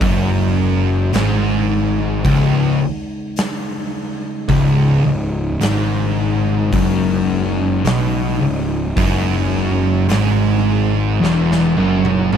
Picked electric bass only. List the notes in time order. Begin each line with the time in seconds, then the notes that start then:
0.01 F#1
1.15 G#1
2.25 C#1
4.49 C#1
5.05 C#1
5.61 G#1
6.73 F#1
7.85 B1
8.41 C#1
8.96 F#1
10.09 G#1
11.21 E1
11.77 F#1
12.33 G#1